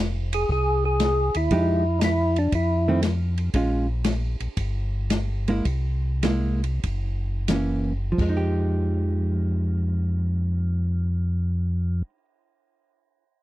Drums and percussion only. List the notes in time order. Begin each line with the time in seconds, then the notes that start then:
0.33 ride
0.49 kick
1.00 snare, hi-hat pedal, ride
1.34 ride
1.51 kick, ride
2.01 snare, hi-hat pedal, ride
2.36 ride
2.52 kick, ride
3.03 snare, hi-hat pedal, ride
3.38 ride
3.54 kick, ride
4.04 snare, hi-hat pedal, ride
4.40 ride
4.57 kick, ride
5.10 snare, hi-hat pedal, ride
5.48 ride
5.65 kick, ride
6.23 snare, hi-hat pedal, ride
6.64 ride
6.83 kick, ride
7.48 snare, hi-hat pedal, ride
8.18 kick, crash